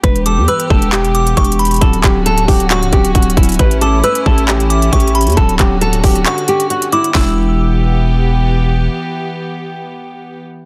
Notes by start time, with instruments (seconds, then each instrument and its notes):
0.03 808-style bass E1, string section E3 B3 G4, nylon-string guitar B4, kick, closed hi-hat
0.16 closed hi-hat
0.26 nylon-string guitar A4, synth bell D6, closed hi-hat
0.38 808-style bass E2
0.48 nylon-string guitar B4, synth bell E6, closed hi-hat
0.60 closed hi-hat
0.70 808-style bass E1, nylon-string guitar A4, kick
0.82 closed hi-hat
0.93 nylon-string guitar G4, clap, closed hi-hat
1.05 closed hi-hat
1.15 synth bell D6, closed hi-hat
1.27 closed hi-hat
1.37 808-style bass E1, nylon-string guitar G4, synth bell C#6, kick, closed hi-hat
1.44 closed hi-hat
1.52 closed hi-hat
1.59 synth bell B5, closed hi-hat
1.65 closed hi-hat
1.67 closed hi-hat
1.71 closed hi-hat
1.74 closed hi-hat
1.76 closed hi-hat
1.81 808-style bass D1, string section D3 C#4 F#4, nylon-string guitar A4, kick, closed hi-hat
1.93 closed hi-hat
2.04 808-style bass D1, nylon-string guitar G4, kick, clap, closed hi-hat
2.26 nylon-string guitar A4, synth bell A5, closed hi-hat
2.38 closed hi-hat
2.48 808-style bass D1, nylon-string guitar G4, kick, open hi-hat
2.60 closed hi-hat
2.70 nylon-string guitar F#4, synth bell C#6, clap, closed hi-hat
2.82 808-style bass C#1, closed hi-hat
2.92 808-style bass D1, nylon-string guitar G4, kick, closed hi-hat
3.05 closed hi-hat
3.14 808-style bass D1, nylon-string guitar F#4, kick, closed hi-hat
3.22 closed hi-hat
3.30 closed hi-hat
3.37 808-style bass D1, nylon-string guitar E4, kick, closed hi-hat
3.43 closed hi-hat
3.45 closed hi-hat
3.49 closed hi-hat
3.52 closed hi-hat
3.54 closed hi-hat
3.59 808-style bass A1, string section A3 E4, nylon-string guitar B4, kick, closed hi-hat
3.71 closed hi-hat
3.81 nylon-string guitar A4, synth bell D6, closed hi-hat
4.04 nylon-string guitar B4, synth bell E6, closed hi-hat
4.15 closed hi-hat
4.26 808-style bass A1, nylon-string guitar A4, kick
4.38 closed hi-hat
4.48 nylon-string guitar G4, clap, closed hi-hat
4.60 closed hi-hat
4.70 synth bell D6, closed hi-hat
4.82 closed hi-hat
4.93 808-style bass A1, nylon-string guitar G4, synth bell C#6, kick, closed hi-hat
5.00 closed hi-hat
5.08 closed hi-hat
5.15 synth bell B5, closed hi-hat
5.21 closed hi-hat
5.22 closed hi-hat
5.27 808-style bass E2, closed hi-hat
5.30 closed hi-hat
5.32 closed hi-hat
5.37 808-style bass D1, string section D3 F#4, nylon-string guitar A4, kick, closed hi-hat
5.49 closed hi-hat
5.59 808-style bass D1, nylon-string guitar G4, kick, clap, closed hi-hat
5.81 nylon-string guitar A4, synth bell A5, closed hi-hat
5.93 closed hi-hat
6.04 808-style bass D1, nylon-string guitar G4, kick, open hi-hat
6.16 closed hi-hat
6.26 nylon-string guitar F#4, synth bell C#6, clap, closed hi-hat
6.38 closed hi-hat
6.48 nylon-string guitar G4, closed hi-hat
6.60 closed hi-hat
6.70 nylon-string guitar F#4, closed hi-hat
6.82 closed hi-hat
6.92 nylon-string guitar E4, synth bell D6, closed hi-hat
7.04 closed hi-hat
7.15 808-style bass E1, string section E3 B3 G4, nylon-string guitar E4, synth bell E6, kick, snare, clap